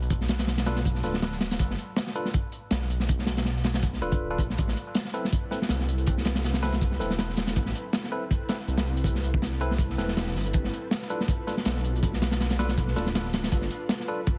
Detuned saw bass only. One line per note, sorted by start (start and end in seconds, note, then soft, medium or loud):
0.00 1.02 B1 loud
1.04 1.58 D1 medium
1.59 1.77 G1 loud
2.71 4.00 B1 loud
4.02 4.40 D1 medium
4.39 4.56 B1 medium
4.59 4.75 A1 loud
5.70 6.99 C2 loud
7.00 7.55 E1 medium
7.56 7.73 A1 loud
8.68 9.97 C2 loud
9.98 10.35 E1 medium
10.35 10.52 G1 medium
10.54 10.71 G1 loud
11.66 12.95 B1 loud
12.96 13.51 D1 medium
13.52 13.69 G1 loud